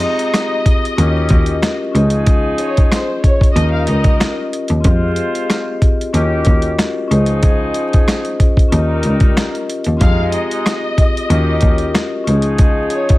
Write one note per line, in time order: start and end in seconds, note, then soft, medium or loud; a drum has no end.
0.00 0.64 C3 medium
0.00 0.64 G#3 medium
0.00 0.93 C4 medium
0.00 0.64 D#4 medium
0.00 0.94 F4 medium
0.00 0.95 G4 medium
0.00 0.95 G#4 medium
0.00 0.96 D#5 medium
0.00 1.76 D#5 medium
0.00 closed hi-hat medium
0.19 closed hi-hat medium
0.34 cross-stick loud
0.34 snare loud
0.34 closed hi-hat loud
0.66 kick medium
0.66 closed hi-hat medium
0.85 closed hi-hat medium
0.96 1.25 D#2 loud
0.96 1.61 D#3 medium
0.96 1.90 C#4 medium
0.96 1.61 C#4 medium
0.96 1.92 F4 medium
0.96 1.05 F#4 medium
0.96 1.61 G4 medium
0.96 1.95 A#4 medium
0.96 1.95 D#5 medium
0.96 closed hi-hat medium
1.05 1.98 G4 medium
1.29 1.57 D#2 medium
1.29 kick medium
1.29 closed hi-hat medium
1.46 closed hi-hat soft
1.62 cross-stick medium
1.62 snare loud
1.62 closed hi-hat medium
1.92 2.49 C#2 loud
1.92 3.21 F3 medium
1.92 3.51 C#4 medium
1.92 3.21 D#4 medium
1.92 3.52 F4 medium
1.92 3.53 G#4 medium
1.92 3.21 G#4 medium
1.92 closed hi-hat medium
1.97 3.54 D#5 medium
2.10 closed hi-hat medium
2.27 kick loud
2.27 closed hi-hat loud
2.58 2.89 C#5 medium
2.58 closed hi-hat medium
2.77 kick loud
2.77 closed hi-hat medium
2.92 3.21 C5 medium
2.92 cross-stick loud
2.92 snare loud
2.92 closed hi-hat loud
3.23 3.53 C#5 medium
3.23 kick medium
3.23 closed hi-hat medium
3.41 kick loud
3.41 closed hi-hat medium
3.52 3.83 D#2 loud
3.52 4.80 C#4 medium
3.52 4.81 F4 medium
3.52 4.82 G4 medium
3.52 3.70 D#5 loud
3.56 4.51 G3 medium
3.56 4.51 D#4 medium
3.56 4.83 A#4 medium
3.56 4.51 A#4 medium
3.56 4.83 D#5 medium
3.56 closed hi-hat medium
3.72 3.86 F5 medium
3.87 4.15 C#2 medium
3.87 4.35 D#5 medium
3.87 closed hi-hat medium
4.04 kick medium
4.04 closed hi-hat soft
4.20 cross-stick medium
4.20 snare loud
4.20 closed hi-hat medium
4.53 closed hi-hat medium
4.68 4.82 D#2 medium
4.68 closed hi-hat medium
4.80 6.09 C4 medium
4.80 6.10 F4 medium
4.80 6.11 G4 medium
4.80 closed hi-hat loud
4.85 5.12 F2 loud
4.85 5.80 G#3 medium
4.85 5.80 F4 medium
4.85 6.11 G#4 medium
4.85 5.80 C5 medium
4.85 6.12 D#5 medium
4.85 kick loud
5.16 closed hi-hat medium
5.35 closed hi-hat medium
5.50 cross-stick loud
5.50 snare loud
5.50 closed hi-hat loud
5.82 kick medium
5.82 closed hi-hat medium
6.01 closed hi-hat soft
6.13 6.41 D#2 loud
6.13 6.77 D#3 medium
6.13 7.06 C#4 medium
6.13 6.77 C#4 medium
6.13 7.08 F4 medium
6.13 6.21 F#4 medium
6.13 6.77 G4 medium
6.13 7.11 A#4 medium
6.13 7.11 D#5 medium
6.13 closed hi-hat medium
6.21 7.14 G4 medium
6.45 6.73 D#2 medium
6.45 kick medium
6.45 closed hi-hat medium
6.62 closed hi-hat soft
6.79 cross-stick medium
6.79 snare loud
6.79 closed hi-hat medium
7.08 7.65 C#2 loud
7.08 8.37 F3 medium
7.08 8.67 C#4 medium
7.08 8.37 D#4 medium
7.08 8.68 F4 medium
7.08 8.69 G#4 medium
7.08 8.37 G#4 medium
7.08 closed hi-hat medium
7.12 8.70 C5 medium
7.12 8.70 D#5 medium
7.26 closed hi-hat medium
7.43 kick loud
7.43 closed hi-hat loud
7.74 closed hi-hat medium
7.93 kick loud
7.93 closed hi-hat medium
8.08 cross-stick medium
8.08 snare loud
8.08 closed hi-hat loud
8.25 closed hi-hat soft
8.40 kick medium
8.40 closed hi-hat medium
8.57 kick loud
8.57 closed hi-hat medium
8.68 8.99 D#2 loud
8.68 9.67 G3 medium
8.68 9.97 C#4 medium
8.68 9.67 D#4 medium
8.68 9.97 F4 medium
8.68 9.98 G4 medium
8.68 9.67 A#4 medium
8.68 closed hi-hat medium
8.73 9.99 A#4 medium
8.73 10.00 D#5 medium
9.03 9.32 C#2 medium
9.03 closed hi-hat medium
9.20 kick medium
9.20 closed hi-hat soft
9.37 cross-stick medium
9.37 snare loud
9.37 closed hi-hat medium
9.55 closed hi-hat soft
9.70 closed hi-hat medium
9.84 9.99 D#2 medium
9.84 closed hi-hat medium
9.97 11.25 C4 medium
9.97 11.26 F4 medium
9.97 11.27 G4 medium
9.97 10.30 F5 loud
9.97 closed hi-hat loud
10.01 10.28 F2 loud
10.01 10.96 C3 medium
10.01 10.96 G#3 medium
10.01 10.96 D#4 medium
10.01 11.28 G#4 medium
10.01 11.28 D#5 medium
10.01 kick loud
10.32 12.08 D#5 medium
10.32 closed hi-hat medium
10.51 closed hi-hat medium
10.66 cross-stick medium
10.66 snare loud
10.66 closed hi-hat loud
10.98 kick medium
10.98 closed hi-hat medium
11.17 closed hi-hat medium
11.29 11.57 D#2 loud
11.29 11.94 D#3 medium
11.29 12.23 C#4 medium
11.29 11.94 C#4 medium
11.29 12.24 F4 medium
11.29 11.37 F#4 medium
11.29 11.94 G4 medium
11.29 12.27 A#4 medium
11.29 12.28 D#5 medium
11.29 closed hi-hat medium
11.37 12.30 G4 medium
11.61 11.90 D#2 medium
11.61 kick medium
11.61 closed hi-hat medium
11.78 closed hi-hat soft
11.95 cross-stick medium
11.95 snare loud
11.95 closed hi-hat medium
12.24 12.81 C#2 loud
12.24 13.18 F3 medium
12.24 13.18 C#4 medium
12.24 13.18 D#4 medium
12.24 13.18 F4 medium
12.24 13.18 G#4 medium
12.24 closed hi-hat medium
12.30 13.18 D#5 medium
12.42 closed hi-hat medium
12.58 kick loud
12.58 closed hi-hat loud
12.90 13.18 C#5 medium
12.90 closed hi-hat medium
13.09 kick loud
13.09 closed hi-hat medium